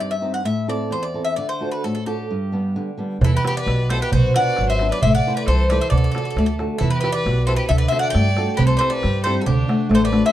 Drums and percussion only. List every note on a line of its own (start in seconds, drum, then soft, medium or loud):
3.22 darbuka dum loud
3.44 darbuka tek medium
3.68 darbuka tek medium
3.90 darbuka tek medium
4.12 darbuka dum medium
4.34 darbuka tek medium
4.56 darbuka tek medium
4.79 darbuka tek medium
5.02 darbuka dum medium
5.47 darbuka tek medium
5.70 darbuka tek medium
5.91 darbuka dum medium
6.15 darbuka tek medium
6.37 darbuka tek medium
6.59 darbuka tek medium
6.70 darbuka tek soft
6.81 darbuka dum medium
7.04 darbuka tek medium
7.26 darbuka tek medium
7.49 darbuka tek medium
7.70 darbuka dum medium
7.92 darbuka tek medium
8.14 darbuka tek medium
8.37 darbuka tek medium
8.48 darbuka tek soft
8.59 darbuka dum medium
8.81 darbuka tek medium
9.03 darbuka tek medium
9.26 darbuka tek medium
9.47 darbuka dum medium
9.58 darbuka tek soft
9.69 darbuka tek medium
9.81 darbuka tek soft
9.91 darbuka tek medium
10.02 darbuka tek soft
10.13 darbuka tek medium